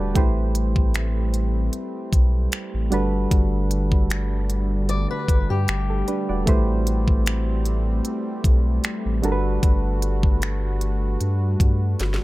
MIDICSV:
0, 0, Header, 1, 6, 480
1, 0, Start_track
1, 0, Tempo, 789474
1, 95, Time_signature, 4, 2, 24, 8
1, 7441, End_track
2, 0, Start_track
2, 0, Title_t, "Steel-string acoustic guitar"
2, 0, Program_c, 0, 25
2, 0, Note_on_c, 0, 71, 72
2, 70, Note_off_c, 0, 71, 0
2, 2975, Note_on_c, 0, 74, 75
2, 3098, Note_off_c, 0, 74, 0
2, 3105, Note_on_c, 0, 71, 79
2, 3332, Note_off_c, 0, 71, 0
2, 3345, Note_on_c, 0, 67, 76
2, 3911, Note_off_c, 0, 67, 0
2, 7441, End_track
3, 0, Start_track
3, 0, Title_t, "Synth keys"
3, 0, Program_c, 1, 88
3, 0, Control_c, 1, 64, 127
3, 0, Note_on_c, 1, 55, 80
3, 0, Note_on_c, 1, 62, 75
3, 0, Note_on_c, 1, 66, 72
3, 0, Note_on_c, 1, 69, 74
3, 0, Note_on_c, 1, 71, 88
3, 0, Note_on_c, 1, 74, 65
3, 0, Note_on_c, 1, 79, 71
3, 0, Note_on_c, 1, 81, 73
3, 78, Note_off_c, 1, 74, 0
3, 87, Note_on_c, 1, 57, 79
3, 92, Note_on_c, 1, 64, 71
3, 97, Note_on_c, 1, 67, 73
3, 101, Note_off_c, 1, 71, 0
3, 101, Note_on_c, 1, 71, 72
3, 102, Control_c, 1, 64, 0
3, 103, Note_off_c, 1, 81, 0
3, 104, Note_off_c, 1, 66, 0
3, 105, Note_off_c, 1, 55, 0
3, 106, Note_off_c, 1, 69, 0
3, 106, Note_off_c, 1, 79, 0
3, 106, Note_on_c, 1, 72, 81
3, 108, Note_off_c, 1, 62, 0
3, 205, Control_c, 1, 64, 127
3, 800, Note_off_c, 1, 57, 0
3, 802, Note_off_c, 1, 64, 0
3, 805, Note_off_c, 1, 67, 0
3, 807, Note_off_c, 1, 71, 0
3, 809, Note_off_c, 1, 72, 0
3, 1767, Note_on_c, 1, 55, 89
3, 1772, Note_on_c, 1, 62, 82
3, 1777, Note_on_c, 1, 66, 78
3, 1781, Note_on_c, 1, 69, 83
3, 1782, Control_c, 1, 64, 0
3, 1786, Note_on_c, 1, 71, 96
3, 1884, Control_c, 1, 64, 127
3, 2542, Note_off_c, 1, 55, 0
3, 2545, Note_off_c, 1, 62, 0
3, 2547, Note_off_c, 1, 66, 0
3, 2550, Note_off_c, 1, 69, 0
3, 2552, Note_off_c, 1, 71, 0
3, 3586, Note_on_c, 1, 69, 65
3, 3690, Note_off_c, 1, 69, 0
3, 3697, Note_on_c, 1, 71, 70
3, 3700, Note_on_c, 1, 62, 61
3, 3819, Note_off_c, 1, 71, 0
3, 3820, Note_off_c, 1, 62, 0
3, 3825, Note_on_c, 1, 74, 64
3, 3829, Note_on_c, 1, 66, 56
3, 3926, Note_on_c, 1, 57, 82
3, 3931, Note_on_c, 1, 64, 75
3, 3936, Note_on_c, 1, 67, 73
3, 3940, Note_on_c, 1, 71, 74
3, 3942, Control_c, 1, 64, 0
3, 3945, Note_on_c, 1, 72, 90
3, 4035, Control_c, 1, 64, 127
3, 4053, Note_off_c, 1, 74, 0
3, 4055, Note_off_c, 1, 66, 0
3, 4640, Note_off_c, 1, 57, 0
3, 4642, Note_off_c, 1, 64, 0
3, 4644, Note_off_c, 1, 67, 0
3, 4647, Note_off_c, 1, 71, 0
3, 4649, Note_off_c, 1, 72, 0
3, 5607, Note_on_c, 1, 55, 88
3, 5612, Note_on_c, 1, 62, 77
3, 5616, Note_on_c, 1, 66, 79
3, 5621, Control_c, 1, 64, 0
3, 5621, Note_on_c, 1, 69, 77
3, 5626, Note_on_c, 1, 70, 78
3, 5663, Note_off_c, 1, 70, 0
3, 5665, Note_on_c, 1, 71, 100
3, 5722, Control_c, 1, 64, 127
3, 6382, Note_off_c, 1, 55, 0
3, 6385, Note_off_c, 1, 62, 0
3, 6387, Note_off_c, 1, 66, 0
3, 6390, Note_off_c, 1, 69, 0
3, 6412, Note_off_c, 1, 71, 0
3, 7441, End_track
4, 0, Start_track
4, 0, Title_t, "Analog synth pad"
4, 0, Program_c, 2, 89
4, 0, Note_on_c, 2, 50, 77
4, 0, Note_on_c, 2, 57, 67
4, 0, Note_on_c, 2, 69, 80
4, 72, Note_off_c, 2, 50, 0
4, 83, Note_off_c, 2, 69, 0
4, 93, Note_on_c, 2, 60, 79
4, 94, Note_on_c, 2, 55, 82
4, 1757, Note_off_c, 2, 60, 0
4, 1776, Note_on_c, 2, 50, 78
4, 3910, Note_off_c, 2, 57, 0
4, 3914, Note_off_c, 2, 50, 0
4, 3935, Note_on_c, 2, 57, 67
4, 3935, Note_on_c, 2, 60, 78
4, 5598, Note_off_c, 2, 60, 0
4, 5616, Note_on_c, 2, 66, 75
4, 7441, Note_off_c, 2, 55, 0
4, 7441, Note_off_c, 2, 57, 0
4, 7441, Note_off_c, 2, 66, 0
4, 7441, End_track
5, 0, Start_track
5, 0, Title_t, "Sub bass"
5, 0, Program_c, 3, 38
5, 0, Note_on_c, 3, 28, 84
5, 83, Note_off_c, 3, 28, 0
5, 96, Note_on_c, 3, 33, 105
5, 1031, Note_off_c, 3, 33, 0
5, 1293, Note_on_c, 3, 35, 96
5, 1507, Note_off_c, 3, 35, 0
5, 1666, Note_on_c, 3, 33, 85
5, 1764, Note_off_c, 3, 33, 0
5, 1776, Note_on_c, 3, 31, 96
5, 1989, Note_off_c, 3, 31, 0
5, 2016, Note_on_c, 3, 31, 110
5, 3080, Note_off_c, 3, 31, 0
5, 3214, Note_on_c, 3, 31, 93
5, 3329, Note_off_c, 3, 31, 0
5, 3346, Note_on_c, 3, 43, 98
5, 3443, Note_off_c, 3, 43, 0
5, 3456, Note_on_c, 3, 31, 97
5, 3669, Note_off_c, 3, 31, 0
5, 3826, Note_on_c, 3, 28, 86
5, 3923, Note_off_c, 3, 28, 0
5, 3936, Note_on_c, 3, 33, 100
5, 4871, Note_off_c, 3, 33, 0
5, 5134, Note_on_c, 3, 35, 92
5, 5348, Note_off_c, 3, 35, 0
5, 5506, Note_on_c, 3, 33, 92
5, 5603, Note_off_c, 3, 33, 0
5, 5616, Note_on_c, 3, 31, 103
5, 5829, Note_off_c, 3, 31, 0
5, 5856, Note_on_c, 3, 31, 103
5, 6791, Note_off_c, 3, 31, 0
5, 6815, Note_on_c, 3, 43, 97
5, 7028, Note_off_c, 3, 43, 0
5, 7054, Note_on_c, 3, 43, 90
5, 7268, Note_off_c, 3, 43, 0
5, 7296, Note_on_c, 3, 31, 98
5, 7410, Note_off_c, 3, 31, 0
5, 7441, End_track
6, 0, Start_track
6, 0, Title_t, "Drums"
6, 94, Note_on_c, 9, 36, 112
6, 94, Note_on_c, 9, 42, 68
6, 155, Note_off_c, 9, 36, 0
6, 155, Note_off_c, 9, 42, 0
6, 334, Note_on_c, 9, 42, 78
6, 395, Note_off_c, 9, 42, 0
6, 461, Note_on_c, 9, 36, 91
6, 522, Note_off_c, 9, 36, 0
6, 574, Note_on_c, 9, 42, 60
6, 581, Note_on_c, 9, 26, 103
6, 635, Note_off_c, 9, 42, 0
6, 642, Note_off_c, 9, 26, 0
6, 813, Note_on_c, 9, 42, 61
6, 874, Note_off_c, 9, 42, 0
6, 1051, Note_on_c, 9, 42, 64
6, 1112, Note_off_c, 9, 42, 0
6, 1293, Note_on_c, 9, 36, 95
6, 1296, Note_on_c, 9, 42, 65
6, 1353, Note_off_c, 9, 36, 0
6, 1357, Note_off_c, 9, 42, 0
6, 1532, Note_on_c, 9, 42, 63
6, 1538, Note_on_c, 9, 26, 106
6, 1593, Note_off_c, 9, 42, 0
6, 1599, Note_off_c, 9, 26, 0
6, 1774, Note_on_c, 9, 42, 62
6, 1835, Note_off_c, 9, 42, 0
6, 2015, Note_on_c, 9, 36, 112
6, 2015, Note_on_c, 9, 42, 65
6, 2075, Note_off_c, 9, 36, 0
6, 2075, Note_off_c, 9, 42, 0
6, 2254, Note_on_c, 9, 42, 76
6, 2315, Note_off_c, 9, 42, 0
6, 2381, Note_on_c, 9, 36, 86
6, 2442, Note_off_c, 9, 36, 0
6, 2494, Note_on_c, 9, 42, 61
6, 2502, Note_on_c, 9, 26, 105
6, 2555, Note_off_c, 9, 42, 0
6, 2562, Note_off_c, 9, 26, 0
6, 2734, Note_on_c, 9, 42, 65
6, 2795, Note_off_c, 9, 42, 0
6, 2972, Note_on_c, 9, 42, 65
6, 3033, Note_off_c, 9, 42, 0
6, 3213, Note_on_c, 9, 36, 102
6, 3217, Note_on_c, 9, 42, 65
6, 3274, Note_off_c, 9, 36, 0
6, 3278, Note_off_c, 9, 42, 0
6, 3453, Note_on_c, 9, 42, 62
6, 3459, Note_on_c, 9, 26, 107
6, 3514, Note_off_c, 9, 42, 0
6, 3520, Note_off_c, 9, 26, 0
6, 3695, Note_on_c, 9, 42, 62
6, 3756, Note_off_c, 9, 42, 0
6, 3935, Note_on_c, 9, 36, 110
6, 3935, Note_on_c, 9, 42, 68
6, 3996, Note_off_c, 9, 36, 0
6, 3996, Note_off_c, 9, 42, 0
6, 4176, Note_on_c, 9, 42, 78
6, 4237, Note_off_c, 9, 42, 0
6, 4302, Note_on_c, 9, 36, 88
6, 4363, Note_off_c, 9, 36, 0
6, 4415, Note_on_c, 9, 42, 59
6, 4423, Note_on_c, 9, 26, 109
6, 4476, Note_off_c, 9, 42, 0
6, 4484, Note_off_c, 9, 26, 0
6, 4654, Note_on_c, 9, 42, 61
6, 4715, Note_off_c, 9, 42, 0
6, 4892, Note_on_c, 9, 42, 67
6, 4953, Note_off_c, 9, 42, 0
6, 5133, Note_on_c, 9, 36, 97
6, 5137, Note_on_c, 9, 42, 66
6, 5194, Note_off_c, 9, 36, 0
6, 5197, Note_off_c, 9, 42, 0
6, 5373, Note_on_c, 9, 42, 63
6, 5379, Note_on_c, 9, 26, 109
6, 5434, Note_off_c, 9, 42, 0
6, 5440, Note_off_c, 9, 26, 0
6, 5615, Note_on_c, 9, 42, 59
6, 5676, Note_off_c, 9, 42, 0
6, 5854, Note_on_c, 9, 42, 68
6, 5855, Note_on_c, 9, 36, 116
6, 5915, Note_off_c, 9, 42, 0
6, 5916, Note_off_c, 9, 36, 0
6, 6094, Note_on_c, 9, 42, 81
6, 6155, Note_off_c, 9, 42, 0
6, 6222, Note_on_c, 9, 36, 88
6, 6282, Note_off_c, 9, 36, 0
6, 6335, Note_on_c, 9, 42, 61
6, 6342, Note_on_c, 9, 26, 101
6, 6395, Note_off_c, 9, 42, 0
6, 6403, Note_off_c, 9, 26, 0
6, 6574, Note_on_c, 9, 42, 63
6, 6634, Note_off_c, 9, 42, 0
6, 6813, Note_on_c, 9, 42, 65
6, 6873, Note_off_c, 9, 42, 0
6, 7053, Note_on_c, 9, 36, 98
6, 7057, Note_on_c, 9, 42, 62
6, 7114, Note_off_c, 9, 36, 0
6, 7117, Note_off_c, 9, 42, 0
6, 7293, Note_on_c, 9, 42, 62
6, 7300, Note_on_c, 9, 38, 53
6, 7354, Note_off_c, 9, 42, 0
6, 7361, Note_off_c, 9, 38, 0
6, 7380, Note_on_c, 9, 38, 55
6, 7441, Note_off_c, 9, 38, 0
6, 7441, End_track
0, 0, End_of_file